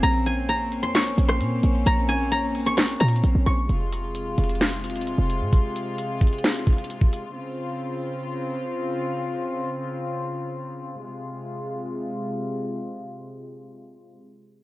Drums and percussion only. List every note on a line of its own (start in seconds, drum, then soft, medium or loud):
0.03 closed hi-hat medium
0.26 closed hi-hat medium
0.49 closed hi-hat medium
0.72 closed hi-hat soft
0.83 closed hi-hat medium
0.95 snare loud
0.95 clap loud
0.95 closed hi-hat medium
1.18 closed hi-hat medium
1.29 cross-stick loud
1.41 closed hi-hat medium
1.63 closed hi-hat medium
1.86 closed hi-hat medium
2.10 closed hi-hat medium
2.32 closed hi-hat medium
2.55 closed hi-hat soft
2.55 open hi-hat medium
2.66 closed hi-hat medium
2.78 snare loud
2.78 clap loud
2.78 closed hi-hat medium
3.01 closed hi-hat medium
3.08 closed hi-hat medium
3.16 closed hi-hat soft
3.24 closed hi-hat medium
3.46 open hi-hat medium
3.69 closed hi-hat medium
3.93 closed hi-hat medium
4.15 closed hi-hat medium
4.38 closed hi-hat medium
4.44 closed hi-hat medium
4.50 closed hi-hat medium
4.55 closed hi-hat soft
4.61 snare loud
4.61 clap medium
4.61 closed hi-hat medium
4.84 closed hi-hat medium
4.90 closed hi-hat medium
4.96 closed hi-hat medium
5.01 closed hi-hat medium
5.07 closed hi-hat medium
5.30 closed hi-hat medium
5.53 kick loud
5.53 closed hi-hat medium
5.76 closed hi-hat medium
5.98 closed hi-hat medium
6.21 kick medium
6.21 closed hi-hat medium
6.27 closed hi-hat medium
6.33 closed hi-hat soft
6.39 closed hi-hat soft
6.44 snare loud
6.44 clap loud
6.44 closed hi-hat medium
6.67 kick medium
6.67 closed hi-hat medium
6.73 closed hi-hat medium
6.79 closed hi-hat medium
6.84 closed hi-hat medium
6.90 closed hi-hat medium
7.02 kick medium
7.13 closed hi-hat medium